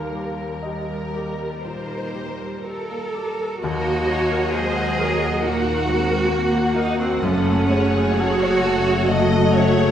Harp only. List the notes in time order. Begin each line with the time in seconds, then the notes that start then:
Already playing: D#3 G3 G4
0.15 G3
1.15 G4
1.65 D#4
2.14 G3
3.14 G4
3.63 D#3
4.09 A#3
4.54 A#4
4.99 F#4
5.42 D#4
5.88 A#3
6.32 A#4
6.77 F#4
7.22 F#2
7.70 A3
8.18 G#5
8.63 C#4
9.07 C#3
9.52 A3